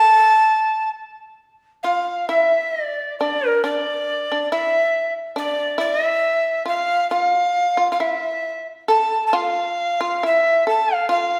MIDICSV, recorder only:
0, 0, Header, 1, 2, 480
1, 0, Start_track
1, 0, Tempo, 895522
1, 29, Time_signature, 2, 2, 24, 8
1, 2431, Tempo, 851064
1, 3391, Tempo, 888889
1, 5311, Tempo, 863309
1, 6202, End_track
2, 0, Start_track
2, 0, Title_t, "Recorder"
2, 0, Program_c, 0, 74
2, 0, Note_on_c, 0, 81, 118
2, 479, Note_off_c, 0, 81, 0
2, 981, Note_on_c, 0, 77, 63
2, 1212, Note_off_c, 0, 77, 0
2, 1224, Note_on_c, 0, 76, 73
2, 1465, Note_off_c, 0, 76, 0
2, 1465, Note_on_c, 0, 75, 73
2, 1524, Note_off_c, 0, 75, 0
2, 1524, Note_on_c, 0, 74, 73
2, 1690, Note_off_c, 0, 74, 0
2, 1711, Note_on_c, 0, 74, 70
2, 1867, Note_off_c, 0, 74, 0
2, 1867, Note_on_c, 0, 70, 70
2, 1936, Note_off_c, 0, 70, 0
2, 1952, Note_on_c, 0, 74, 76
2, 2406, Note_off_c, 0, 74, 0
2, 2424, Note_on_c, 0, 76, 76
2, 2767, Note_off_c, 0, 76, 0
2, 2907, Note_on_c, 0, 74, 86
2, 3129, Note_off_c, 0, 74, 0
2, 3142, Note_on_c, 0, 74, 81
2, 3283, Note_off_c, 0, 74, 0
2, 3283, Note_on_c, 0, 76, 81
2, 3602, Note_off_c, 0, 76, 0
2, 3627, Note_on_c, 0, 77, 73
2, 3847, Note_off_c, 0, 77, 0
2, 3857, Note_on_c, 0, 77, 73
2, 4278, Note_off_c, 0, 77, 0
2, 4299, Note_on_c, 0, 77, 52
2, 4345, Note_on_c, 0, 76, 69
2, 4353, Note_off_c, 0, 77, 0
2, 4705, Note_off_c, 0, 76, 0
2, 4825, Note_on_c, 0, 81, 77
2, 5015, Note_off_c, 0, 81, 0
2, 5027, Note_on_c, 0, 81, 48
2, 5072, Note_on_c, 0, 77, 82
2, 5080, Note_off_c, 0, 81, 0
2, 5558, Note_off_c, 0, 77, 0
2, 5571, Note_on_c, 0, 76, 77
2, 5787, Note_off_c, 0, 76, 0
2, 5808, Note_on_c, 0, 81, 78
2, 5953, Note_off_c, 0, 81, 0
2, 5953, Note_on_c, 0, 77, 78
2, 6022, Note_off_c, 0, 77, 0
2, 6039, Note_on_c, 0, 77, 78
2, 6202, Note_off_c, 0, 77, 0
2, 6202, End_track
0, 0, End_of_file